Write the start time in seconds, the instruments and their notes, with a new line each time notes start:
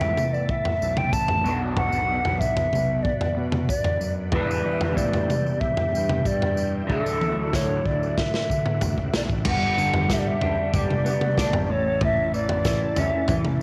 Already playing: fingered electric bass C#2, clean electric guitar A2 E3 A3 B3 A4, tonewheel organ B3 E4 A4, flute E5
0.00 floor tom, tambourine
0.17 mid tom, tambourine
0.33 flute D5, tambourine
0.49 flute E5, kick
0.65 floor tom
0.82 fingered electric bass B1, tambourine
0.97 flute G5, floor tom, mid tom
1.13 fingered electric bass A1, flute A5, kick, tambourine
1.28 floor tom
1.44 fingered electric bass B1, clean electric guitar B2 F#3 B3 D4, tonewheel organ D4 F#4, tambourine
1.48 clean electric guitar F#4
1.76 flute F#5, kick, floor tom
1.92 fingered electric bass B1, tambourine
2.25 fingered electric bass B1, floor tom
2.40 flute E5, kick, tambourine
2.57 floor tom, tambourine
2.72 fingered electric bass B1, mid tom, tambourine
3.03 flute D5, kick
3.21 floor tom
3.37 fingered electric bass B2
3.52 floor tom, mid tom
3.69 flute D5, kick, tambourine
3.84 floor tom
4.00 fingered electric bass F#2, tambourine
4.32 clean electric guitar E2 B2 E3 G3 D4 E4, fingered electric bass E2, tonewheel organ E4 G4, flute B4, kick, floor tom
4.51 tambourine
4.66 fingered electric bass E3
4.81 floor tom
4.97 fingered electric bass A2, flute D5, kick, tambourine
5.13 floor tom, tambourine
5.30 mid tom, tambourine
5.46 tambourine
5.60 flute E5, kick
5.77 floor tom
5.93 fingered electric bass G2, tambourine
6.09 floor tom, mid tom
6.25 fingered electric bass G2, flute D5, kick, tambourine
6.42 floor tom
6.57 tambourine
6.87 fingered electric bass D2, clean electric guitar D3 F#3 A3 D4 E4, tonewheel organ E4 F#4, kick
6.91 flute A4
7.05 fingered electric bass D2, tambourine
7.21 high tom, tambourine
7.37 fingered electric bass D2
7.53 flute C#5, kick, snare, tambourine
7.86 fingered electric bass D2, flute D5, kick
8.03 tambourine
8.18 flute E5, kick, snare
8.34 snare
8.50 fingered electric bass D3, kick, tambourine
8.66 mid tom
8.81 fingered electric bass D2, kick, floor tom, tambourine
8.98 fingered electric bass C#2, kick
9.13 fingered electric bass B1, flute D5, snare, tambourine
9.29 fingered electric bass A1, kick, tambourine
9.45 fingered electric bass G1, clean electric guitar G2, tonewheel organ B3 D4 G4, flute F#5, kick, floor tom, crash
9.78 clean electric guitar D3, tambourine
9.94 floor tom
10.09 clean electric guitar G3, kick, snare, tambourine
10.13 flute E5
10.19 flute D5
10.27 flute E5
10.41 fingered electric bass C#2, clean electric guitar D4, floor tom
10.73 fingered electric bass G1, clean electric guitar G3, flute D5, kick, floor tom, tambourine
10.90 mid tom
11.05 clean electric guitar B3, tambourine
11.21 mid tom
11.37 fingered electric bass D2, clean electric guitar D4, kick, snare, tambourine
11.53 fingered electric bass G#1, floor tom
11.68 fingered electric bass A1, clean electric guitar A2, tonewheel organ C#3 E4 A4, flute C#5
12.01 clean electric guitar A2, flute E5, kick, floor tom
12.34 clean electric guitar E3, flute D5, tambourine
12.49 floor tom
12.65 clean electric guitar E3, kick, snare, tambourine
12.96 fingered electric bass C#2, clean electric guitar C#4, flute E5, floor tom, tambourine
13.28 fingered electric bass A1, clean electric guitar E3, kick, floor tom, tambourine
13.45 mid tom